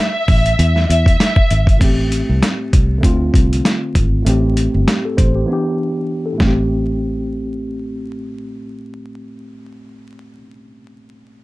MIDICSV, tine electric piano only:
0, 0, Header, 1, 2, 480
1, 0, Start_track
1, 0, Key_signature, 0, "minor"
1, 0, Tempo, 612245
1, 1417, Time_signature, 4, 2, 24, 8
1, 8967, End_track
2, 0, Start_track
2, 0, Title_t, "Tine electric piano"
2, 0, Program_c, 0, 4
2, 1386, Note_on_c, 0, 45, 74
2, 1405, Note_on_c, 0, 57, 70
2, 1424, Note_on_c, 0, 60, 69
2, 1442, Note_on_c, 0, 67, 81
2, 1554, Control_c, 0, 64, 127
2, 2338, Note_on_c, 0, 50, 81
2, 2342, Note_off_c, 0, 45, 0
2, 2347, Note_off_c, 0, 57, 0
2, 2356, Note_on_c, 0, 57, 70
2, 2361, Note_off_c, 0, 60, 0
2, 2371, Note_off_c, 0, 67, 0
2, 2375, Note_on_c, 0, 60, 66
2, 2388, Control_c, 0, 64, 0
2, 2393, Note_on_c, 0, 65, 85
2, 2530, Control_c, 0, 64, 127
2, 3298, Note_off_c, 0, 50, 0
2, 3307, Note_off_c, 0, 57, 0
2, 3311, Note_on_c, 0, 45, 80
2, 3317, Note_off_c, 0, 60, 0
2, 3326, Note_off_c, 0, 65, 0
2, 3330, Note_on_c, 0, 57, 69
2, 3346, Control_c, 0, 64, 0
2, 3348, Note_on_c, 0, 60, 66
2, 3367, Note_on_c, 0, 67, 79
2, 3483, Control_c, 0, 64, 127
2, 3811, Note_off_c, 0, 67, 0
2, 3821, Note_on_c, 0, 67, 62
2, 3949, Note_off_c, 0, 67, 0
2, 3960, Note_on_c, 0, 69, 69
2, 4055, Note_off_c, 0, 69, 0
2, 4055, Note_on_c, 0, 72, 69
2, 4186, Note_off_c, 0, 72, 0
2, 4198, Note_on_c, 0, 67, 63
2, 4264, Note_off_c, 0, 45, 0
2, 4274, Note_off_c, 0, 57, 0
2, 4277, Note_on_c, 0, 52, 75
2, 4284, Note_off_c, 0, 60, 0
2, 4295, Note_on_c, 0, 59, 69
2, 4308, Control_c, 0, 64, 0
2, 4314, Note_on_c, 0, 62, 67
2, 4323, Note_off_c, 0, 67, 0
2, 4333, Note_on_c, 0, 67, 85
2, 4422, Control_c, 0, 64, 127
2, 4550, Note_off_c, 0, 67, 0
2, 4907, Note_on_c, 0, 69, 64
2, 4961, Note_on_c, 0, 45, 82
2, 4992, Note_off_c, 0, 52, 0
2, 4999, Note_on_c, 0, 57, 75
2, 5002, Note_off_c, 0, 59, 0
2, 5008, Note_off_c, 0, 69, 0
2, 5011, Note_off_c, 0, 62, 0
2, 5026, Control_c, 0, 64, 0
2, 5036, Note_on_c, 0, 60, 76
2, 5073, Note_on_c, 0, 67, 89
2, 5119, Control_c, 0, 64, 127
2, 5266, Control_c, 0, 64, 0
2, 5407, Control_c, 0, 64, 127
2, 8086, Note_off_c, 0, 45, 0
2, 8124, Note_off_c, 0, 57, 0
2, 8161, Note_off_c, 0, 60, 0
2, 8198, Note_off_c, 0, 67, 0
2, 8967, End_track
0, 0, End_of_file